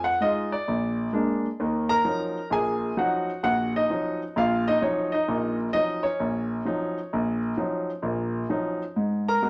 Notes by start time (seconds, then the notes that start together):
Already playing: F2
0.04 F#5
0.20 G#3 D#4 F4 D#5
0.52 D5
0.68 A#1
1.12 G#3 A#3 D4
1.60 D#2 D#3
1.89 A#4 A#5
2.05 F3 F#3 C#4 D#4
2.50 A#1 A#2 G#4 G#5
2.97 F3 F#3 C#4 D#4 F#4 F#5
3.43 A#1 F#4 F#5
3.76 D#4 D#5
3.90 F3 F#3 C#4 D#4
4.36 A#1 F4 F5
4.68 D#4 D#5
4.82 F3 F#3 C#4 D#4 C#5
5.12 D#4 D#5
5.28 A#1 A#2
5.73 F3 F#3 C#4 D#4 D#5
6.03 C#4 C#5
6.20 A#1
6.65 F3 F#3 C#4 D#4
7.13 A#1
7.57 F3 F#3 C#4 D#4
8.02 A#1 A#2
8.49 F3 F#3 C#4 D#4
8.96 G#2
9.28 A#4 A#5
9.42 G#3 A#3 B3 F#4